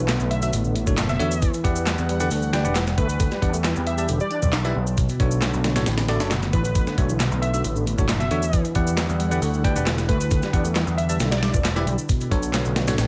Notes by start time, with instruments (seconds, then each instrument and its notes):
Already playing: picked electric bass B1, analog synth pad D3 A3 B3
0.08 tonewheel organ B2, snare, clap, closed hi-hat, shaker
0.20 picked electric bass B1, shaker
0.31 digital synth lead E5, closed hi-hat
0.42 tine electric piano D4 F#4 A4 E5, digital synth lead E5, shaker
0.53 picked electric bass A1, tonewheel organ A2, closed hi-hat, shaker
0.64 tonewheel organ D3, shaker
0.75 tonewheel organ A2, closed hi-hat
0.87 picked electric bass F#1, tine electric piano D4 F#4 A4 C#5, kick, shaker
0.97 snare, clap, closed hi-hat, shaker
1.09 tonewheel organ B2, digital synth lead E5, snare, shaker
1.19 picked electric bass E2, tonewheel organ D3, tine electric piano D4 F#4 A4 C#5, digital synth lead E5, closed hi-hat
1.31 shaker
1.42 tonewheel organ E3, analog synth pad E3 G3 F#5, kick, closed hi-hat, shaker
1.54 closed hi-hat, shaker
1.64 picked electric bass E2, tine electric piano G4 B4 D5 F#5, kick, closed hi-hat
1.76 shaker
1.86 snare, clap, closed hi-hat, shaker
1.98 picked electric bass E2, shaker
2.09 tonewheel organ G3, closed hi-hat
2.20 tonewheel organ D3, tine electric piano G4 B4 D5 F#5, shaker
2.31 picked electric bass D2, tonewheel organ D3, open hi-hat, shaker
2.42 shaker
2.53 tonewheel organ D4, tine electric piano G4 B4 D5 G5, snare, closed hi-hat
2.65 picked electric bass E1, tine electric piano G4 B4 D5 F#5, shaker
2.75 tonewheel organ E3, snare, clap, closed hi-hat, shaker
2.87 snare, shaker
2.98 picked electric bass D2, tonewheel organ A3, digital synth lead B4, kick, closed hi-hat
3.09 closed hi-hat, shaker
3.20 tonewheel organ D3, analog synth pad G4, kick, closed hi-hat, shaker
3.31 tonewheel organ G3, snare, shaker
3.42 picked electric bass E2, tonewheel organ D4, tine electric piano G4 B4 D5 F#5, kick, closed hi-hat
3.54 tonewheel organ A3, shaker
3.64 tonewheel organ E3, snare, clap, closed hi-hat, shaker
3.76 picked electric bass E2, shaker
3.87 digital synth lead E5, closed hi-hat
3.98 tine electric piano G4 B4 D5 A5, digital synth lead E5, shaker
4.08 picked electric bass E1, tonewheel organ D3, closed hi-hat, shaker
4.20 tonewheel organ G3, digital synth lead D5, shaker
4.31 tonewheel organ D4, closed hi-hat
4.42 picked electric bass B1, kick, shaker
4.53 snare, clap, closed hi-hat, shaker
4.65 tonewheel organ E4, tine electric piano G4 B4 D5 E5, snare, shaker
4.75 picked electric bass B1, tonewheel organ B3
4.87 shaker
4.97 tonewheel organ B2, analog synth pad D3 A3 B3, kick, closed hi-hat, shaker
5.09 closed hi-hat, shaker
5.20 picked electric bass B1, tine electric piano D4 F#4 A4 C#5, kick, closed hi-hat
5.31 shaker
5.42 snare, clap, closed hi-hat, shaker
5.53 picked electric bass B1, shaker
5.64 tonewheel organ D3, snare, closed hi-hat
5.76 tonewheel organ A2, tine electric piano D4 F#4 A4 C#5, snare, closed hi-hat, shaker
5.86 picked electric bass A1, tonewheel organ A2, snare, closed hi-hat, shaker
5.98 snare, closed hi-hat, shaker
6.09 tonewheel organ A3, tine electric piano D4 F#4 A4 D5, snare, closed hi-hat
6.20 picked electric bass F#1, tine electric piano D4 F#4 A4 C#5, snare, closed hi-hat, shaker
6.31 tonewheel organ B2, snare, clap, closed hi-hat, shaker
6.42 snare, shaker
6.53 picked electric bass A1, tonewheel organ E3, digital synth lead B4, kick, closed hi-hat
6.65 closed hi-hat, shaker
6.75 tonewheel organ A2, kick, closed hi-hat, shaker
6.87 tonewheel organ D3, snare, shaker
6.98 picked electric bass B1, tonewheel organ A3, tine electric piano D4 F#4 A4 C#5, kick, closed hi-hat
7.09 tonewheel organ E3, shaker
7.20 tonewheel organ B2, snare, clap, closed hi-hat, shaker
7.31 picked electric bass B1, shaker
7.42 digital synth lead E5, closed hi-hat
7.54 tine electric piano D4 F#4 A4 E5, digital synth lead E5, shaker
7.64 picked electric bass A1, tonewheel organ A2, closed hi-hat, shaker
7.76 tonewheel organ D3, shaker
7.86 tonewheel organ A2, closed hi-hat
7.98 picked electric bass F#1, tine electric piano D4 F#4 A4 C#5, kick, shaker
8.09 snare, clap, closed hi-hat, shaker
8.20 tonewheel organ B2, digital synth lead E5, snare, shaker
8.30 picked electric bass E2, tonewheel organ D3, tine electric piano D4 F#4 A4 C#5, digital synth lead E5, closed hi-hat
8.42 shaker
8.53 analog synth pad D3 G3 E4 F#5, tonewheel organ E3, kick, closed hi-hat, shaker
8.65 closed hi-hat, shaker
8.75 picked electric bass E2, tine electric piano G4 B4 D5 F#5, kick, closed hi-hat
8.87 shaker
8.97 snare, clap, closed hi-hat, shaker
9.09 picked electric bass E2, shaker
9.20 tonewheel organ G3, closed hi-hat
9.31 tonewheel organ D3, tine electric piano G4 B4 D5 F#5, shaker
9.41 picked electric bass D2, tonewheel organ D3, open hi-hat, shaker
9.54 shaker
9.64 tonewheel organ D4, tine electric piano G4 B4 D5 G5, kick, closed hi-hat
9.76 picked electric bass E1, tine electric piano G4 B4 D5 F#5, shaker
9.86 tonewheel organ E3, snare, clap, closed hi-hat, shaker
9.98 snare, shaker
10.08 picked electric bass D2, tonewheel organ A3, digital synth lead B4, kick, closed hi-hat
10.21 closed hi-hat, shaker
10.31 tonewheel organ D3, kick, closed hi-hat, shaker
10.42 tonewheel organ G3, snare, shaker
10.53 picked electric bass E2, tonewheel organ D4, tine electric piano G4 B4 D5 F#5, kick, closed hi-hat
10.65 tonewheel organ A3, shaker
10.75 tonewheel organ E3, snare, clap, closed hi-hat, shaker
10.87 picked electric bass E2, shaker
10.98 digital synth lead E5, closed hi-hat
11.09 tine electric piano G4 B4 D5 A5, digital synth lead E5, shaker
11.20 picked electric bass B1, tonewheel organ D3, snare, closed hi-hat, shaker
11.31 tonewheel organ G3, digital synth lead D5, snare, closed hi-hat, shaker
11.42 tonewheel organ G3, snare, closed hi-hat
11.54 picked electric bass E1, tonewheel organ E3, kick, shaker
11.64 snare, clap, closed hi-hat, shaker
11.76 tonewheel organ E4, tine electric piano G4 B4 D5 E5, snare, shaker
11.86 picked electric bass B1, tonewheel organ G3, closed hi-hat
11.98 shaker
12.09 tonewheel organ B2, analog synth pad D3 A3 B3 D4, kick, closed hi-hat, shaker
12.21 closed hi-hat, shaker
12.31 picked electric bass B1, tine electric piano D4 F#4 A4 C#5, kick, closed hi-hat
12.43 shaker
12.53 snare, clap, closed hi-hat, shaker
12.65 picked electric bass B1, shaker
12.76 tonewheel organ D3, snare, closed hi-hat
12.87 tonewheel organ A2, tine electric piano D4 F#4 A4 C#5, snare, closed hi-hat, shaker
12.98 picked electric bass A1, tonewheel organ A2, snare, closed hi-hat, shaker